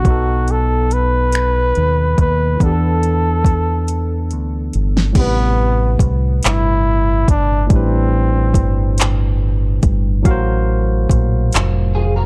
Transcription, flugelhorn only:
0.00 0.53 F#4 loud
0.51 0.95 A4 medium
0.93 2.19 B4 loud
2.21 2.65 B4 medium
2.64 4.32 A4 medium
5.18 5.97 B3 loud
6.45 7.25 E4 loud
7.30 7.68 D4 loud
7.73 9.38 C4 medium

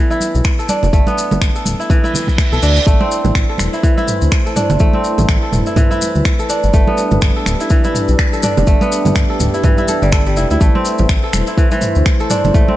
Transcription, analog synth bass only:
0.35 0.41 B1 medium
0.83 0.89 F1 loud
0.93 1.02 G1 medium
1.31 1.38 G1 medium
1.42 1.50 G1 medium
1.66 1.75 D1 medium
2.52 2.59 B1 medium
2.63 2.79 D2 medium
2.87 2.96 A1 loud
3.25 3.31 A1 medium
3.35 3.44 A1 medium
3.59 3.68 E1 medium
4.22 4.28 D2 medium
4.70 4.76 G1 loud
4.80 4.89 A1 loud
5.18 5.25 A1 medium
5.29 5.37 A1 medium
5.53 5.62 E1 medium
6.15 6.22 D2 medium
6.64 6.70 G1 loud
6.74 6.83 G1 medium
7.12 7.18 G1 medium
7.22 7.31 G1 medium
7.46 7.55 D1 medium
8.09 8.15 B1 medium
8.57 8.64 F1 loud
8.67 8.76 G1 loud
9.05 9.12 G1 medium
9.16 9.25 G1 medium
9.40 9.49 D1 medium
10.02 10.38 G1 loud
10.37 10.46 F1 medium
10.51 10.57 D2 medium
10.61 10.70 A1 medium
10.99 11.05 A1 medium
11.09 11.18 A1 medium
11.33 11.42 E1 medium
11.96 12.02 D2 medium
12.44 12.51 G1 loud
12.55 12.63 A1 loud

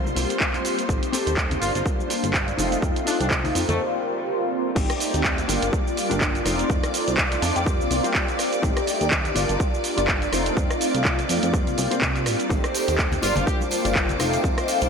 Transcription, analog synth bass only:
0.06 0.13 C2 medium
0.16 0.26 C2 loud
0.89 0.99 A1 loud
1.27 1.57 D#2 medium
1.62 1.71 G1 medium
1.75 1.83 G1 medium
2.24 2.54 G1 medium
2.58 2.77 F1 medium
2.82 2.92 F2 loud
3.20 3.50 C2 medium
3.55 3.65 F2 medium
3.69 3.79 F2 medium
4.76 4.86 A1 loud
5.14 5.44 D#2 medium
5.49 5.59 G1 medium
5.63 5.70 G1 medium
6.11 6.41 G1 medium
6.46 6.64 F1 medium
6.70 6.80 F2 loud
7.08 7.38 C2 medium
7.42 7.52 F2 medium
7.56 7.82 F2 medium
7.81 7.88 C2 medium
7.91 8.01 C2 loud
8.63 8.73 A1 loud
9.01 9.31 D#2 medium
9.36 9.46 G1 medium
9.49 9.57 G1 medium
9.98 10.28 G1 medium
10.33 10.51 F1 medium
10.57 10.67 F2 loud
10.95 11.25 C2 medium
11.30 11.39 F2 medium
11.43 11.69 F2 medium
11.68 11.75 C2 medium
11.78 11.88 C2 loud
11.92 12.00 C3 soft
12.02 12.28 C3 loud
12.26 12.36 A2 loud
12.50 12.60 A1 loud
12.88 13.18 D#2 medium
13.23 13.33 G1 medium
13.37 13.44 G1 medium
13.85 14.15 G1 medium
14.20 14.38 F1 medium
14.44 14.54 F2 loud
14.82 14.89 C2 medium

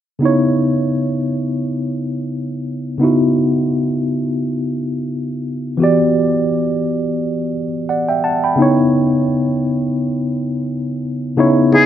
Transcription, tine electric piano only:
0.19 2.95 C#3 medium
0.19 2.96 B3 medium
0.19 2.97 D#4 medium
0.24 2.98 E4 medium
0.24 2.99 C#5 medium
2.98 5.74 C#3 medium
2.98 5.75 B3 medium
2.98 5.76 D#4 medium
3.03 5.77 E4 medium
3.03 5.77 F#4 medium
5.77 8.53 E3 medium
5.77 8.54 B3 medium
5.77 8.55 F#4 medium
5.82 8.56 G4 medium
5.82 7.53 D5 medium
7.89 8.08 D5 soft
7.89 8.08 F#5 soft
8.09 8.23 E5 soft
8.09 8.23 G5 soft
8.24 8.43 F#5 soft
8.24 8.43 A5 medium
8.44 8.77 G5 soft
8.44 8.77 B5 soft
8.56 11.32 C#3 medium
8.56 11.33 B3 medium
8.56 11.34 D#4 medium
8.60 11.35 E4 medium
8.60 11.35 C#5 medium
11.37 11.66 C#3 medium
11.37 11.66 B3 medium
11.37 11.67 D#4 medium
11.37 11.67 E4 medium
11.37 11.68 C#5 medium
11.72 11.86 C#3 medium
11.72 11.86 B3 soft
11.72 11.86 D#4 medium
11.72 11.86 E4 medium
11.72 11.86 G#4 medium

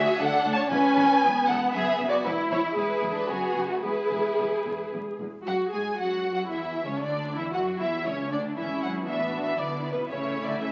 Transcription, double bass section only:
0.20 0.28 D2 medium
0.44 0.52 D2 medium
0.70 0.78 E1 medium
0.96 1.04 E1 medium
1.23 1.31 E1 medium
1.49 1.57 E1 medium
1.74 1.82 F#1 medium
2.00 2.08 F#1 medium
2.25 2.33 E1 medium
2.51 2.59 E1 medium
2.76 2.84 E1 medium
3.03 3.11 E1 medium
3.30 3.38 F#1 medium
3.57 3.65 F#1 medium
3.85 3.93 E1 medium
4.12 4.20 E1 medium
4.39 4.47 E1 medium
4.66 4.74 E1 medium
4.93 5.01 E1 medium
5.19 5.27 E1 soft
5.46 5.54 F#2 medium
5.72 5.80 G#2 medium
5.99 6.33 F#2 medium
6.34 6.51 F#2 medium
6.50 6.85 E2 medium
6.85 6.92 C#2 medium
7.03 7.37 D2 medium
7.38 7.54 E2 medium
7.55 7.80 F#2 medium
7.80 8.05 E2 medium
8.06 8.31 C#2 medium
8.31 8.56 D2 medium
8.57 9.04 G#1 medium
9.08 9.58 A1 soft
9.59 10.09 B1 medium
10.11 10.62 A1 medium
10.62 10.72 C#2 medium

